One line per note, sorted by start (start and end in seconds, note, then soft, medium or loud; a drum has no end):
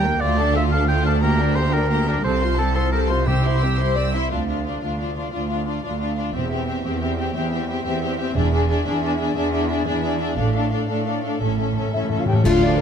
0.00 0.22 D#2 medium
0.00 0.22 G5 medium
0.05 0.22 A#3 medium
0.05 0.22 A#4 soft
0.05 0.22 G5 medium
0.21 2.20 D2 medium
0.21 0.38 A3 medium
0.21 0.37 F4 soft
0.21 0.55 D5 medium
0.21 0.37 F5 medium
0.39 0.55 D4 medium
0.39 0.56 A4 medium
0.39 0.56 A5 medium
0.55 0.72 A3 soft
0.55 0.72 F4 soft
0.55 0.63 E5 medium
0.55 0.72 F5 soft
0.71 0.89 D4 soft
0.71 0.89 A4 medium
0.71 0.87 F5 medium
0.71 0.89 A5 medium
0.88 1.05 A3 medium
0.88 1.04 F4 medium
0.88 1.04 F5 soft
0.88 1.05 G5 medium
1.05 1.23 D4 soft
1.05 1.23 A4 medium
1.05 1.13 F5 medium
1.05 1.22 A5 medium
1.22 1.39 A#3 medium
1.22 1.39 G4 soft
1.22 1.57 A#4 medium
1.22 1.38 A#5 medium
1.39 1.57 D4 soft
1.39 1.56 A#4 soft
1.39 1.57 G5 soft
1.56 1.73 A#3 soft
1.56 1.74 G4 soft
1.56 1.75 C5 medium
1.56 1.73 A#5 soft
1.73 1.90 D4 soft
1.73 2.07 A#4 medium
1.73 1.91 A#4 medium
1.73 1.90 G5 medium
1.90 2.06 A#3 soft
1.90 2.06 G4 soft
1.90 2.06 A#5 soft
2.07 2.24 D4 medium
2.07 2.25 A#4 soft
2.07 2.23 A#4 medium
2.07 2.25 G5 soft
2.23 4.10 C2 medium
2.23 4.11 C2 medium
2.23 2.72 C3 medium
2.23 2.40 C4 soft
2.23 2.40 A4 soft
2.23 2.58 C5 medium
2.23 2.40 A5 medium
2.41 2.59 F4 soft
2.41 2.59 C5 soft
2.41 2.59 C6 medium
2.57 2.76 C4 soft
2.57 2.75 A4 soft
2.57 2.75 A4 medium
2.57 2.75 A5 soft
2.75 2.93 F4 soft
2.75 2.91 A4 medium
2.75 2.93 C5 soft
2.75 2.93 C6 soft
2.92 3.09 C4 soft
2.92 3.09 A4 soft
2.92 3.00 A#4 medium
2.92 3.09 A5 soft
3.09 3.27 F4 soft
3.09 3.27 C5 soft
3.09 3.29 C5 medium
3.09 3.27 C6 soft
3.27 3.76 C3 medium
3.27 3.44 C4 soft
3.27 4.14 G4 medium
3.27 3.44 G4 soft
3.27 3.43 E6 soft
3.43 3.62 E4 soft
3.43 3.63 C5 soft
3.43 3.61 C6 soft
3.61 3.80 C4 soft
3.61 3.80 G4 soft
3.61 3.79 E6 soft
3.80 3.97 E4 soft
3.80 3.96 C5 medium
3.80 3.97 C6 soft
3.97 4.13 C4 soft
3.97 4.14 D5 medium
3.97 4.13 E6 soft
4.15 4.32 E4 soft
4.15 4.32 E5 medium
4.15 4.32 C6 soft
4.31 4.63 D2 soft
4.31 4.77 D2 soft
4.31 4.48 D4 soft
4.31 4.48 F4 soft
4.31 4.46 F5 soft
4.47 4.65 D4 soft
4.47 4.64 F4 soft
4.47 4.65 F5 soft
4.65 4.82 D4 soft
4.65 4.82 F4 soft
4.65 4.80 F5 soft
4.81 5.28 D2 soft
4.81 4.98 D4 soft
4.81 4.99 F4 soft
4.81 4.98 F5 soft
4.99 5.15 D4 soft
4.99 5.16 F4 soft
4.99 5.15 F5 soft
5.16 5.32 D4 soft
5.16 5.33 F4 soft
5.16 5.32 F5 soft
5.33 5.78 D2 soft
5.33 5.49 D4 soft
5.33 5.49 F4 soft
5.33 5.48 F5 soft
5.50 5.66 D4 soft
5.50 5.66 F4 soft
5.50 5.66 F5 soft
5.67 5.82 D4 soft
5.67 5.83 F4 soft
5.67 5.84 F5 soft
5.83 6.29 D2 soft
5.83 5.99 D4 soft
5.83 5.99 F4 soft
5.83 5.99 F5 soft
6.00 6.16 D4 soft
6.00 6.16 F4 soft
6.00 6.15 F5 soft
6.17 6.34 D4 soft
6.17 6.34 F4 soft
6.17 6.34 F5 soft
6.34 6.66 E1 soft
6.34 6.79 E2 soft
6.34 6.50 C4 soft
6.34 6.51 G4 soft
6.34 6.51 E5 soft
6.51 6.68 C4 soft
6.51 6.67 G4 soft
6.51 6.66 E5 soft
6.68 6.84 C4 soft
6.68 6.84 G4 soft
6.68 6.84 E5 soft
6.85 7.30 E2 soft
6.85 7.01 C4 soft
6.85 7.00 G4 soft
6.85 7.00 E5 soft
7.01 7.18 C4 soft
7.01 7.17 G4 soft
7.01 7.18 E5 soft
7.18 7.35 C4 soft
7.18 7.35 G4 soft
7.18 7.34 E5 soft
7.35 7.80 E2 soft
7.35 7.52 C4 soft
7.35 7.51 G4 soft
7.35 7.51 E5 soft
7.52 7.69 C4 soft
7.52 7.68 G4 soft
7.52 7.68 E5 soft
7.69 7.85 C4 soft
7.69 7.84 G4 soft
7.69 7.84 E5 soft
7.85 8.30 E2 soft
7.85 8.03 C4 soft
7.85 8.01 G4 soft
7.85 8.02 E5 soft
8.02 8.19 C4 soft
8.02 8.18 G4 soft
8.02 8.18 E5 soft
8.19 8.36 C4 soft
8.19 8.36 G4 soft
8.19 8.36 E5 soft
8.36 8.68 E1 medium
8.36 8.80 E2 medium
8.36 8.52 D4 soft
8.36 8.52 G#4 soft
8.36 8.51 E5 soft
8.52 8.68 D4 soft
8.52 8.69 G#4 soft
8.52 8.68 E5 soft
8.69 8.85 D4 soft
8.69 8.87 G#4 soft
8.69 8.84 E5 soft
8.85 9.31 E2 medium
8.85 9.02 D4 soft
8.85 9.03 G#4 medium
8.85 9.01 E5 soft
9.03 9.18 D4 soft
9.03 9.20 G#4 soft
9.03 9.17 E5 soft
9.18 9.35 D4 soft
9.18 9.37 G#4 soft
9.18 9.34 E5 medium
9.36 9.81 E2 medium
9.36 9.52 D4 soft
9.36 9.53 G#4 soft
9.36 9.51 E5 medium
9.53 9.69 D4 soft
9.53 9.71 G#4 soft
9.53 9.67 E5 soft
9.68 9.86 D4 soft
9.68 9.86 G#4 soft
9.68 9.85 E5 soft
9.86 10.32 E2 medium
9.86 10.03 D4 soft
9.86 10.04 G#4 soft
9.86 10.01 E5 medium
10.03 10.19 D4 soft
10.03 10.20 G#4 soft
10.03 10.18 E5 soft
10.19 10.37 D4 soft
10.19 10.38 G#4 soft
10.19 10.37 E5 soft
10.36 10.70 A1 medium
10.36 10.84 A2 medium
10.36 10.54 D4 soft
10.36 10.53 A4 soft
10.36 10.53 F5 soft
10.54 10.71 D4 soft
10.54 10.71 A4 soft
10.54 10.69 F5 soft
10.71 10.89 D4 soft
10.71 10.88 A4 soft
10.71 10.86 F5 soft
10.88 11.35 A2 soft
10.88 11.06 D4 soft
10.88 11.05 A4 soft
10.88 11.05 F5 soft
11.06 11.24 D4 soft
11.06 11.22 A4 soft
11.06 11.22 F5 soft
11.23 11.41 D4 soft
11.23 11.40 A4 soft
11.23 11.41 F5 soft
11.41 11.74 A1 soft
11.41 11.88 A2 soft
11.41 11.48 A2 soft
11.41 11.59 C#4 soft
11.41 11.58 A4 soft
11.41 11.58 E5 soft
11.57 11.64 A2 soft
11.57 11.76 C#4 soft
11.57 11.75 A4 soft
11.57 11.76 E5 soft
11.72 11.78 A2 soft
11.72 11.92 A4 soft
11.77 11.86 A2 soft
11.77 11.94 C#4 soft
11.77 11.94 E5 soft
11.87 11.93 A2 soft
11.93 12.40 A2 soft
11.93 12.01 A2 soft
11.93 12.10 C#4 soft
11.93 12.18 E4 medium
11.93 12.10 A4 soft
11.93 12.00 E5 soft
11.93 12.10 E5 soft
12.02 12.08 A2 soft
12.10 12.16 A2 soft
12.10 12.28 C#4 soft
12.10 12.27 A4 soft
12.10 12.27 E5 soft
12.17 12.24 A2 soft
12.17 12.28 F4 medium
12.17 12.24 F5 soft
12.26 12.32 A2 medium
12.26 12.44 G4 medium
12.26 12.45 A4 soft
12.26 12.45 E5 soft
12.26 12.34 G5 medium
12.30 12.40 A2 medium
12.30 12.46 C#4 soft
12.44 12.81 D2 medium
12.44 12.81 A2 medium
12.44 12.81 D3 medium
12.44 12.53 A3 medium
12.44 12.81 D4 medium
12.44 12.78 F4 medium
12.44 12.62 F4 medium
12.44 12.62 D5 medium
12.44 12.78 F5 medium
12.44 12.62 F5 medium
12.44 12.53 A5 medium
12.44 concert bass drum medium
12.44 crash medium
12.63 12.71 A3 medium
12.63 12.80 D4 medium
12.63 12.80 D5 medium
12.63 12.80 F5 medium
12.63 12.71 A5 medium